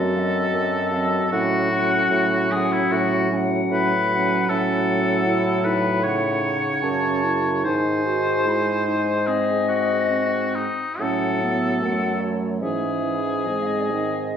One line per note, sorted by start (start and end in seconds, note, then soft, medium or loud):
0.00 0.45 F#2 medium
0.00 0.15 F#3 soft
0.00 0.15 C4 soft
0.00 1.28 A4 medium
0.00 0.14 D#5 soft
0.15 0.92 F#3 soft
0.15 0.91 C4 soft
0.15 0.20 F5 soft
0.19 0.91 D#5 soft
0.54 1.22 F#2 medium
0.91 1.31 F#3 soft
0.91 1.31 C4 soft
0.91 0.97 F5 soft
0.96 1.30 D#5 soft
1.31 2.02 A2 medium
1.31 1.71 F#3 soft
1.31 1.71 C#4 soft
1.31 2.53 F#4 medium
1.31 1.69 F#5 soft
1.70 2.50 F#3 soft
1.70 2.50 C#4 soft
1.70 2.23 F#5 soft
2.11 2.82 A2 medium
2.51 3.30 F#3 soft
2.51 3.30 C#4 soft
2.51 2.74 G#4 medium
2.51 2.56 G#5 soft
2.55 3.30 F#5 soft
2.73 2.93 E4 medium
2.91 3.62 A2 medium
2.91 3.32 F#4 medium
3.31 3.93 F#3 soft
3.31 3.94 C#4 soft
3.31 3.37 G#5 soft
3.36 4.09 F#5 soft
3.71 4.40 A2 medium
3.71 4.51 B4 medium
4.10 4.49 F#3 soft
4.10 4.49 C#4 soft
4.10 4.47 F#5 soft
4.47 6.66 A2 medium
4.47 6.01 F#3 medium
4.47 5.27 C#4 medium
4.47 5.66 A4 medium
4.47 5.99 F#5 medium
5.26 5.67 E4 medium
5.65 6.85 D#4 medium
5.65 6.05 B4 medium
6.04 7.65 C#3 medium
6.04 7.63 C#5 medium
6.04 6.84 F#5 soft
6.82 7.66 F#2 soft
6.82 7.25 C#4 medium
6.82 7.64 A5 soft
7.24 7.66 E4 medium
7.64 10.69 G#2 medium
7.64 8.45 D#3 soft
7.64 8.05 D#4 medium
7.64 9.28 C5 medium
7.64 8.45 G#5 soft
8.06 8.49 F#4 medium
8.46 10.65 G#3 soft
8.46 8.87 E4 soft
8.46 8.54 B5 soft
8.53 9.29 G#5 soft
8.88 9.29 D#4 soft
9.27 10.09 C4 soft
9.27 9.67 G#4 medium
9.27 10.69 D#5 soft
9.68 10.56 F#4 medium
10.09 10.68 C4 soft
10.55 11.02 D#4 medium
10.99 11.84 A2 soft
10.99 12.58 F#3 soft
10.99 11.39 C#4 soft
10.99 12.35 A4 medium
10.99 11.78 F#5 soft
11.42 11.83 B3 soft
11.81 12.64 F#2 soft
11.81 12.63 A3 soft
11.81 12.22 F#5 soft
11.81 11.86 G#5 soft
12.20 12.63 C#5 soft
12.61 13.46 G#2 soft
12.61 13.02 E3 soft
12.61 13.48 C#4 soft
12.61 14.37 G#4 medium
12.61 13.47 E5 soft
13.03 13.48 E3 soft
13.46 14.37 G#2 soft
13.46 13.93 G#3 soft
13.46 14.37 C4 soft
13.46 13.64 D#5 soft
13.63 13.81 D#5 soft
13.63 13.67 F5 soft
13.80 13.84 D5 soft
13.80 14.37 D#5 soft
13.91 14.37 D#3 soft